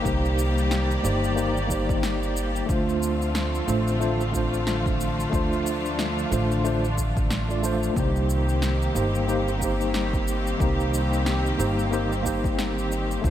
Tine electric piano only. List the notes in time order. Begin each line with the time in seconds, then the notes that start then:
0.02 A#3 D#4 G4
0.08 C5
1.03 A#3 D#4 G4 C5
1.35 A#3 D#4 G4 C5
1.67 A#3 D#4 G4
1.72 C5
2.66 A3 D4 F4
2.71 C5
3.67 A3 D4 F4 C5
3.99 A3 D4 F4 C5
4.31 A3 D4 F4
4.36 C5
5.30 A3 D4 F4
5.35 C5
6.31 A3 D4 F4 C5
6.64 A3 D4 F4 C5
7.49 A3 D4 F4 D5
7.62 A3 D4 F4 C5
7.94 A#3 D#4 G4
7.99 C5
8.94 A#3 D#4 G4 C5
9.28 A#3 D#4 G4 C5
9.59 A#3 D#4 G4
9.64 C5
10.58 A#3 D#4 G4
10.63 C5
11.58 A#3 D#4 G4 C5
11.91 A#3 D#4 G4 C5
12.22 A#3 D#4 G4
12.28 C5
13.21 A3 D4 F4
13.27 C5